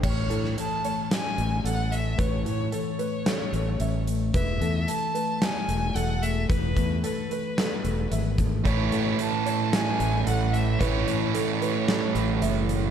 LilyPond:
<<
  \new Staff \with { instrumentName = "Violin" } { \time 4/4 \key a \major \tempo 4 = 111 cis''4 a''4 gis''4 fis''8 e''8 | cis''8 cis''8 cis''2~ cis''8 r8 | e''4 a''4 gis''4 fis''8 e''8 | b'4 b'2~ b'8 r8 |
cis''4 a''4 gis''4 fis''8 e''8 | cis''4 cis''2~ cis''8 r8 | }
  \new Staff \with { instrumentName = "Felt piano" } { \time 4/4 \key a \major cis''8 a'4 cis''4 r8 a'4 | b'4 a'8 b'8 a'4 e''4 | b'8 a'4 b'4 r8 a'4 | b'4 a'8 b'8 a'4 e''4 |
cis''8 a'4 cis''4 r8 a'4 | b'4 a'8 b'8 a'4 e''4 | }
  \new Staff \with { instrumentName = "Clean electric guitar" } { \time 4/4 \key a \major a,8 e8 e8 a8 cis'8 a8 e8 a8 | a,8 e8 e8 a8 cis'8 a8 e8 a8 | e8 a8 e8 a8 b8 a8 e8 a8 | e8 a8 e8 a8 b8 a8 e8 a8 |
a,8 e8 e8 a8 cis'8 a8 e8 a8 | a,8 e8 e8 a8 cis'8 a8 e8 a8 | }
  \new Staff \with { instrumentName = "Distorted electric guitar" } { \time 4/4 \key a \major r1 | r1 | r1 | r1 |
<a, e a cis' e'>1 | <a, e a cis' e'>1 | }
  \new Staff \with { instrumentName = "Fingered electric bass" } { \clef bass \time 4/4 \key a \major a,,8 a,8 r4. a,,8 a,,4 | a,,8 a,8 r4. a,,8 a,,4 | r8 e,8 r4. e,,8 e,,4 | e,,8 e,8 r4. e,,8 gis,,4 |
a,,8 a,8 r4. a,,8 a,,4 | a,,8 a,8 r4. a,,8 fis,,4 | }
  \new DrumStaff \with { instrumentName = "Drums" } \drummode { \time 4/4 <cymc bd>8 hh16 sn16 hh8 hh8 <hh sn>8 hh8 hh8 hh8 | <hh bd>8 hh8 hh8 hh8 <hh sn>8 hh8 hh8 hh8 | <hh bd>8 hh8 hh8 hh8 <hh sn>8 hh8 hh8 hh8 | <hh bd>8 <hh bd>8 hh8 hh8 <hh sn>8 hh8 hh8 <hh bd>8 |
<hh bd>8 hh8 hh8 hh8 <hh sn>8 hh8 hh8 hh8 | <hh bd>8 hh8 hh8 hh8 <hh sn>8 hh8 hh8 hh8 | }
>>